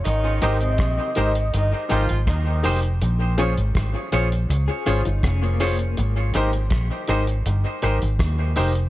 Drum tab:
HH |x-xxx-xxx-xxx-ox|x-xxx-xxx-xxx-ox|x-xxx-xxx-xxx-ox|
SD |----r-------r---|----r-------r---|----r-------r---|
BD |----o-------o---|----o-------o---|----o-------o---|